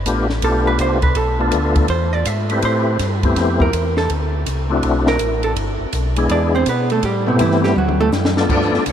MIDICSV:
0, 0, Header, 1, 5, 480
1, 0, Start_track
1, 0, Tempo, 366524
1, 1522, Time_signature, 4, 2, 24, 8
1, 11684, End_track
2, 0, Start_track
2, 0, Title_t, "Hollow-body jazz guitar"
2, 0, Program_c, 0, 26
2, 582, Note_on_c, 0, 69, 75
2, 872, Note_off_c, 0, 69, 0
2, 881, Note_on_c, 0, 71, 89
2, 1042, Note_off_c, 0, 71, 0
2, 1064, Note_on_c, 0, 72, 86
2, 1344, Note_off_c, 0, 72, 0
2, 1349, Note_on_c, 0, 71, 89
2, 1516, Note_off_c, 0, 71, 0
2, 1528, Note_on_c, 0, 69, 73
2, 2262, Note_off_c, 0, 69, 0
2, 2488, Note_on_c, 0, 72, 78
2, 2787, Note_off_c, 0, 72, 0
2, 2787, Note_on_c, 0, 74, 83
2, 2969, Note_off_c, 0, 74, 0
2, 2969, Note_on_c, 0, 76, 90
2, 3278, Note_off_c, 0, 76, 0
2, 3278, Note_on_c, 0, 74, 86
2, 3441, Note_off_c, 0, 74, 0
2, 3471, Note_on_c, 0, 72, 74
2, 4193, Note_off_c, 0, 72, 0
2, 4735, Note_on_c, 0, 70, 86
2, 5171, Note_off_c, 0, 70, 0
2, 5209, Note_on_c, 0, 69, 80
2, 5367, Note_off_c, 0, 69, 0
2, 6656, Note_on_c, 0, 70, 99
2, 7092, Note_off_c, 0, 70, 0
2, 7126, Note_on_c, 0, 69, 87
2, 7225, Note_off_c, 0, 69, 0
2, 8270, Note_on_c, 0, 62, 66
2, 8272, Note_on_c, 0, 74, 80
2, 8555, Note_off_c, 0, 74, 0
2, 8557, Note_off_c, 0, 62, 0
2, 8575, Note_on_c, 0, 60, 73
2, 8585, Note_on_c, 0, 72, 101
2, 8731, Note_off_c, 0, 60, 0
2, 8732, Note_off_c, 0, 72, 0
2, 8760, Note_on_c, 0, 59, 69
2, 8763, Note_on_c, 0, 71, 84
2, 9041, Note_off_c, 0, 71, 0
2, 9042, Note_off_c, 0, 59, 0
2, 9059, Note_on_c, 0, 57, 75
2, 9059, Note_on_c, 0, 69, 80
2, 9211, Note_off_c, 0, 69, 0
2, 9213, Note_off_c, 0, 57, 0
2, 9229, Note_on_c, 0, 67, 71
2, 9235, Note_on_c, 0, 55, 65
2, 9515, Note_off_c, 0, 67, 0
2, 9519, Note_off_c, 0, 55, 0
2, 9532, Note_on_c, 0, 47, 50
2, 9540, Note_on_c, 0, 59, 50
2, 9690, Note_off_c, 0, 47, 0
2, 9691, Note_off_c, 0, 59, 0
2, 9705, Note_on_c, 0, 52, 70
2, 9707, Note_on_c, 0, 64, 68
2, 9992, Note_off_c, 0, 64, 0
2, 9994, Note_off_c, 0, 52, 0
2, 10008, Note_on_c, 0, 67, 92
2, 10009, Note_on_c, 0, 55, 81
2, 10164, Note_off_c, 0, 67, 0
2, 10167, Note_off_c, 0, 55, 0
2, 10189, Note_on_c, 0, 54, 65
2, 10191, Note_on_c, 0, 66, 82
2, 10474, Note_off_c, 0, 66, 0
2, 10476, Note_off_c, 0, 54, 0
2, 10484, Note_on_c, 0, 69, 105
2, 10493, Note_on_c, 0, 57, 85
2, 10583, Note_off_c, 0, 69, 0
2, 10589, Note_off_c, 0, 57, 0
2, 11138, Note_on_c, 0, 53, 50
2, 11146, Note_on_c, 0, 59, 54
2, 11150, Note_on_c, 0, 62, 53
2, 11408, Note_off_c, 0, 53, 0
2, 11412, Note_off_c, 0, 59, 0
2, 11414, Note_off_c, 0, 62, 0
2, 11684, End_track
3, 0, Start_track
3, 0, Title_t, "Tonewheel organ"
3, 0, Program_c, 1, 16
3, 76, Note_on_c, 1, 57, 69
3, 81, Note_on_c, 1, 59, 65
3, 86, Note_on_c, 1, 62, 68
3, 92, Note_on_c, 1, 65, 60
3, 98, Note_on_c, 1, 67, 74
3, 357, Note_off_c, 1, 57, 0
3, 359, Note_off_c, 1, 59, 0
3, 362, Note_off_c, 1, 62, 0
3, 364, Note_off_c, 1, 65, 0
3, 368, Note_off_c, 1, 67, 0
3, 571, Note_on_c, 1, 59, 58
3, 572, Note_on_c, 1, 57, 75
3, 580, Note_on_c, 1, 62, 58
3, 583, Note_on_c, 1, 65, 66
3, 590, Note_on_c, 1, 67, 70
3, 1293, Note_off_c, 1, 59, 0
3, 1294, Note_off_c, 1, 57, 0
3, 1298, Note_off_c, 1, 62, 0
3, 1300, Note_off_c, 1, 65, 0
3, 1303, Note_off_c, 1, 67, 0
3, 1822, Note_on_c, 1, 57, 78
3, 1836, Note_on_c, 1, 59, 60
3, 1842, Note_on_c, 1, 62, 66
3, 1843, Note_on_c, 1, 65, 66
3, 1849, Note_on_c, 1, 69, 80
3, 2444, Note_off_c, 1, 57, 0
3, 2451, Note_off_c, 1, 59, 0
3, 2454, Note_off_c, 1, 62, 0
3, 2454, Note_off_c, 1, 65, 0
3, 2458, Note_off_c, 1, 69, 0
3, 3270, Note_on_c, 1, 57, 63
3, 3282, Note_on_c, 1, 71, 64
3, 3286, Note_on_c, 1, 60, 67
3, 3293, Note_on_c, 1, 64, 60
3, 3299, Note_on_c, 1, 67, 74
3, 3889, Note_off_c, 1, 57, 0
3, 3894, Note_off_c, 1, 71, 0
3, 3896, Note_off_c, 1, 60, 0
3, 3900, Note_off_c, 1, 64, 0
3, 3903, Note_off_c, 1, 67, 0
3, 4235, Note_on_c, 1, 57, 78
3, 4236, Note_on_c, 1, 59, 73
3, 4248, Note_on_c, 1, 60, 77
3, 4255, Note_on_c, 1, 64, 71
3, 4262, Note_on_c, 1, 67, 89
3, 4851, Note_off_c, 1, 57, 0
3, 4852, Note_off_c, 1, 59, 0
3, 4857, Note_off_c, 1, 60, 0
3, 4861, Note_off_c, 1, 64, 0
3, 4865, Note_off_c, 1, 67, 0
3, 6150, Note_on_c, 1, 57, 73
3, 6158, Note_on_c, 1, 60, 81
3, 6165, Note_on_c, 1, 62, 70
3, 6174, Note_on_c, 1, 64, 76
3, 6178, Note_on_c, 1, 66, 86
3, 6768, Note_off_c, 1, 57, 0
3, 6772, Note_off_c, 1, 60, 0
3, 6776, Note_off_c, 1, 62, 0
3, 6780, Note_off_c, 1, 64, 0
3, 6782, Note_off_c, 1, 66, 0
3, 8078, Note_on_c, 1, 56, 74
3, 8089, Note_on_c, 1, 59, 68
3, 8090, Note_on_c, 1, 62, 72
3, 8102, Note_on_c, 1, 64, 64
3, 8102, Note_on_c, 1, 68, 78
3, 8692, Note_off_c, 1, 56, 0
3, 8697, Note_off_c, 1, 59, 0
3, 8698, Note_off_c, 1, 62, 0
3, 8704, Note_off_c, 1, 64, 0
3, 8704, Note_off_c, 1, 68, 0
3, 9518, Note_on_c, 1, 57, 80
3, 9524, Note_on_c, 1, 59, 72
3, 9528, Note_on_c, 1, 60, 68
3, 9535, Note_on_c, 1, 64, 69
3, 9537, Note_on_c, 1, 67, 92
3, 10132, Note_off_c, 1, 57, 0
3, 10134, Note_off_c, 1, 59, 0
3, 10137, Note_off_c, 1, 60, 0
3, 10140, Note_off_c, 1, 64, 0
3, 10141, Note_off_c, 1, 67, 0
3, 10953, Note_on_c, 1, 57, 57
3, 10958, Note_on_c, 1, 59, 51
3, 10962, Note_on_c, 1, 62, 51
3, 10975, Note_on_c, 1, 65, 47
3, 10975, Note_on_c, 1, 69, 65
3, 11166, Note_on_c, 1, 74, 86
3, 11569, Note_off_c, 1, 57, 0
3, 11571, Note_off_c, 1, 59, 0
3, 11573, Note_off_c, 1, 62, 0
3, 11580, Note_off_c, 1, 65, 0
3, 11580, Note_off_c, 1, 69, 0
3, 11592, Note_off_c, 1, 74, 0
3, 11684, End_track
4, 0, Start_track
4, 0, Title_t, "Tonewheel organ"
4, 0, Program_c, 2, 16
4, 79, Note_on_c, 2, 33, 81
4, 546, Note_off_c, 2, 33, 0
4, 554, Note_on_c, 2, 35, 93
4, 1023, Note_off_c, 2, 35, 0
4, 1034, Note_on_c, 2, 36, 85
4, 1504, Note_off_c, 2, 36, 0
4, 1514, Note_on_c, 2, 35, 77
4, 1984, Note_off_c, 2, 35, 0
4, 1993, Note_on_c, 2, 38, 91
4, 2463, Note_off_c, 2, 38, 0
4, 2470, Note_on_c, 2, 40, 92
4, 2942, Note_off_c, 2, 40, 0
4, 2958, Note_on_c, 2, 44, 90
4, 3426, Note_off_c, 2, 44, 0
4, 3434, Note_on_c, 2, 45, 86
4, 3904, Note_off_c, 2, 45, 0
4, 3920, Note_on_c, 2, 43, 92
4, 4388, Note_off_c, 2, 43, 0
4, 4401, Note_on_c, 2, 41, 97
4, 4868, Note_off_c, 2, 41, 0
4, 4882, Note_on_c, 2, 40, 81
4, 5348, Note_off_c, 2, 40, 0
4, 5365, Note_on_c, 2, 38, 84
4, 5830, Note_off_c, 2, 38, 0
4, 5844, Note_on_c, 2, 36, 84
4, 6309, Note_off_c, 2, 36, 0
4, 6327, Note_on_c, 2, 35, 84
4, 6791, Note_off_c, 2, 35, 0
4, 6807, Note_on_c, 2, 33, 78
4, 7271, Note_off_c, 2, 33, 0
4, 7286, Note_on_c, 2, 31, 87
4, 7572, Note_off_c, 2, 31, 0
4, 7589, Note_on_c, 2, 31, 44
4, 7676, Note_off_c, 2, 31, 0
4, 7769, Note_on_c, 2, 35, 104
4, 8232, Note_off_c, 2, 35, 0
4, 8244, Note_on_c, 2, 40, 88
4, 8709, Note_off_c, 2, 40, 0
4, 8726, Note_on_c, 2, 47, 91
4, 9190, Note_off_c, 2, 47, 0
4, 9206, Note_on_c, 2, 45, 77
4, 9670, Note_off_c, 2, 45, 0
4, 9682, Note_on_c, 2, 43, 93
4, 10148, Note_off_c, 2, 43, 0
4, 10156, Note_on_c, 2, 38, 95
4, 10624, Note_off_c, 2, 38, 0
4, 10634, Note_on_c, 2, 42, 94
4, 11104, Note_off_c, 2, 42, 0
4, 11124, Note_on_c, 2, 43, 76
4, 11410, Note_off_c, 2, 43, 0
4, 11428, Note_on_c, 2, 43, 36
4, 11514, Note_off_c, 2, 43, 0
4, 11606, Note_on_c, 2, 36, 85
4, 11684, Note_off_c, 2, 36, 0
4, 11684, End_track
5, 0, Start_track
5, 0, Title_t, "Drums"
5, 74, Note_on_c, 9, 44, 66
5, 74, Note_on_c, 9, 51, 68
5, 78, Note_on_c, 9, 36, 27
5, 205, Note_off_c, 9, 44, 0
5, 205, Note_off_c, 9, 51, 0
5, 209, Note_off_c, 9, 36, 0
5, 389, Note_on_c, 9, 38, 54
5, 520, Note_off_c, 9, 38, 0
5, 552, Note_on_c, 9, 51, 70
5, 557, Note_on_c, 9, 36, 25
5, 683, Note_off_c, 9, 51, 0
5, 688, Note_off_c, 9, 36, 0
5, 1030, Note_on_c, 9, 44, 51
5, 1030, Note_on_c, 9, 51, 71
5, 1037, Note_on_c, 9, 36, 25
5, 1161, Note_off_c, 9, 44, 0
5, 1161, Note_off_c, 9, 51, 0
5, 1168, Note_off_c, 9, 36, 0
5, 1337, Note_on_c, 9, 51, 49
5, 1344, Note_on_c, 9, 36, 70
5, 1468, Note_off_c, 9, 51, 0
5, 1475, Note_off_c, 9, 36, 0
5, 1505, Note_on_c, 9, 51, 63
5, 1516, Note_on_c, 9, 36, 23
5, 1636, Note_off_c, 9, 51, 0
5, 1647, Note_off_c, 9, 36, 0
5, 1984, Note_on_c, 9, 44, 50
5, 1984, Note_on_c, 9, 51, 70
5, 1995, Note_on_c, 9, 36, 28
5, 2115, Note_off_c, 9, 44, 0
5, 2115, Note_off_c, 9, 51, 0
5, 2126, Note_off_c, 9, 36, 0
5, 2299, Note_on_c, 9, 51, 53
5, 2304, Note_on_c, 9, 36, 69
5, 2430, Note_off_c, 9, 51, 0
5, 2435, Note_off_c, 9, 36, 0
5, 2463, Note_on_c, 9, 51, 58
5, 2475, Note_on_c, 9, 36, 27
5, 2594, Note_off_c, 9, 51, 0
5, 2606, Note_off_c, 9, 36, 0
5, 2951, Note_on_c, 9, 44, 55
5, 2951, Note_on_c, 9, 51, 70
5, 2958, Note_on_c, 9, 36, 19
5, 3082, Note_off_c, 9, 44, 0
5, 3082, Note_off_c, 9, 51, 0
5, 3089, Note_off_c, 9, 36, 0
5, 3267, Note_on_c, 9, 51, 47
5, 3398, Note_off_c, 9, 51, 0
5, 3435, Note_on_c, 9, 51, 66
5, 3440, Note_on_c, 9, 36, 24
5, 3566, Note_off_c, 9, 51, 0
5, 3571, Note_off_c, 9, 36, 0
5, 3919, Note_on_c, 9, 44, 64
5, 3919, Note_on_c, 9, 51, 74
5, 3923, Note_on_c, 9, 36, 26
5, 3925, Note_on_c, 9, 38, 37
5, 4050, Note_off_c, 9, 44, 0
5, 4050, Note_off_c, 9, 51, 0
5, 4054, Note_off_c, 9, 36, 0
5, 4056, Note_off_c, 9, 38, 0
5, 4232, Note_on_c, 9, 51, 54
5, 4234, Note_on_c, 9, 36, 65
5, 4363, Note_off_c, 9, 51, 0
5, 4365, Note_off_c, 9, 36, 0
5, 4403, Note_on_c, 9, 51, 64
5, 4405, Note_on_c, 9, 36, 25
5, 4410, Note_on_c, 9, 38, 38
5, 4534, Note_off_c, 9, 51, 0
5, 4536, Note_off_c, 9, 36, 0
5, 4541, Note_off_c, 9, 38, 0
5, 4715, Note_on_c, 9, 36, 65
5, 4846, Note_off_c, 9, 36, 0
5, 4887, Note_on_c, 9, 44, 54
5, 4887, Note_on_c, 9, 51, 78
5, 4888, Note_on_c, 9, 36, 23
5, 5018, Note_off_c, 9, 44, 0
5, 5018, Note_off_c, 9, 51, 0
5, 5019, Note_off_c, 9, 36, 0
5, 5197, Note_on_c, 9, 38, 57
5, 5328, Note_off_c, 9, 38, 0
5, 5364, Note_on_c, 9, 51, 63
5, 5369, Note_on_c, 9, 36, 22
5, 5495, Note_off_c, 9, 51, 0
5, 5500, Note_off_c, 9, 36, 0
5, 5845, Note_on_c, 9, 44, 54
5, 5845, Note_on_c, 9, 51, 68
5, 5849, Note_on_c, 9, 36, 20
5, 5976, Note_off_c, 9, 44, 0
5, 5976, Note_off_c, 9, 51, 0
5, 5980, Note_off_c, 9, 36, 0
5, 6323, Note_on_c, 9, 51, 61
5, 6328, Note_on_c, 9, 36, 26
5, 6454, Note_off_c, 9, 51, 0
5, 6459, Note_off_c, 9, 36, 0
5, 6637, Note_on_c, 9, 38, 63
5, 6768, Note_off_c, 9, 38, 0
5, 6799, Note_on_c, 9, 44, 69
5, 6799, Note_on_c, 9, 51, 71
5, 6807, Note_on_c, 9, 36, 20
5, 6930, Note_off_c, 9, 44, 0
5, 6930, Note_off_c, 9, 51, 0
5, 6938, Note_off_c, 9, 36, 0
5, 7109, Note_on_c, 9, 51, 47
5, 7240, Note_off_c, 9, 51, 0
5, 7286, Note_on_c, 9, 51, 70
5, 7288, Note_on_c, 9, 36, 20
5, 7417, Note_off_c, 9, 51, 0
5, 7419, Note_off_c, 9, 36, 0
5, 7761, Note_on_c, 9, 44, 52
5, 7761, Note_on_c, 9, 51, 70
5, 7768, Note_on_c, 9, 36, 20
5, 7892, Note_off_c, 9, 44, 0
5, 7892, Note_off_c, 9, 51, 0
5, 7898, Note_off_c, 9, 36, 0
5, 8072, Note_on_c, 9, 51, 58
5, 8203, Note_off_c, 9, 51, 0
5, 8243, Note_on_c, 9, 51, 65
5, 8247, Note_on_c, 9, 36, 20
5, 8374, Note_off_c, 9, 51, 0
5, 8378, Note_off_c, 9, 36, 0
5, 8722, Note_on_c, 9, 44, 55
5, 8722, Note_on_c, 9, 51, 75
5, 8726, Note_on_c, 9, 36, 22
5, 8853, Note_off_c, 9, 44, 0
5, 8853, Note_off_c, 9, 51, 0
5, 8857, Note_off_c, 9, 36, 0
5, 9033, Note_on_c, 9, 51, 46
5, 9164, Note_off_c, 9, 51, 0
5, 9202, Note_on_c, 9, 51, 71
5, 9206, Note_on_c, 9, 36, 29
5, 9333, Note_off_c, 9, 51, 0
5, 9337, Note_off_c, 9, 36, 0
5, 9677, Note_on_c, 9, 44, 63
5, 9677, Note_on_c, 9, 51, 72
5, 9683, Note_on_c, 9, 36, 21
5, 9808, Note_off_c, 9, 44, 0
5, 9808, Note_off_c, 9, 51, 0
5, 9814, Note_off_c, 9, 36, 0
5, 9841, Note_on_c, 9, 38, 31
5, 9972, Note_off_c, 9, 38, 0
5, 10004, Note_on_c, 9, 38, 52
5, 10135, Note_off_c, 9, 38, 0
5, 10162, Note_on_c, 9, 48, 51
5, 10293, Note_off_c, 9, 48, 0
5, 10327, Note_on_c, 9, 48, 60
5, 10458, Note_off_c, 9, 48, 0
5, 10483, Note_on_c, 9, 48, 80
5, 10614, Note_off_c, 9, 48, 0
5, 10635, Note_on_c, 9, 44, 58
5, 10642, Note_on_c, 9, 38, 64
5, 10766, Note_off_c, 9, 44, 0
5, 10773, Note_off_c, 9, 38, 0
5, 10805, Note_on_c, 9, 38, 89
5, 10936, Note_off_c, 9, 38, 0
5, 10963, Note_on_c, 9, 38, 83
5, 11094, Note_off_c, 9, 38, 0
5, 11123, Note_on_c, 9, 36, 63
5, 11127, Note_on_c, 9, 49, 67
5, 11254, Note_off_c, 9, 36, 0
5, 11258, Note_off_c, 9, 49, 0
5, 11284, Note_on_c, 9, 38, 27
5, 11415, Note_off_c, 9, 38, 0
5, 11449, Note_on_c, 9, 38, 42
5, 11579, Note_off_c, 9, 38, 0
5, 11602, Note_on_c, 9, 44, 59
5, 11602, Note_on_c, 9, 51, 69
5, 11604, Note_on_c, 9, 36, 17
5, 11684, Note_off_c, 9, 36, 0
5, 11684, Note_off_c, 9, 44, 0
5, 11684, Note_off_c, 9, 51, 0
5, 11684, End_track
0, 0, End_of_file